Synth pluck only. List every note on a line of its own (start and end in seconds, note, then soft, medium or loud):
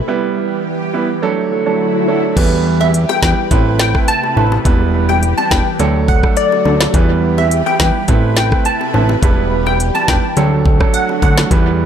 2.81 2.91 E5 medium
3.09 3.20 G5 medium
3.23 3.34 G5 medium
3.80 3.92 G5 medium
4.08 4.49 A5 loud
5.09 5.20 G5 medium
5.38 5.48 A5 medium
5.51 5.63 G5 medium
6.08 6.20 F#5 medium
6.37 6.78 D5 medium
7.38 7.48 E5 medium
7.66 7.77 G5 medium
7.80 7.92 G5 medium
8.37 8.49 G5 medium
8.66 9.07 A5 medium
9.67 9.77 G5 medium
9.95 10.05 A5 medium
10.08 10.20 G5 medium
10.94 11.06 F#5 medium
11.22 11.34 F#5 medium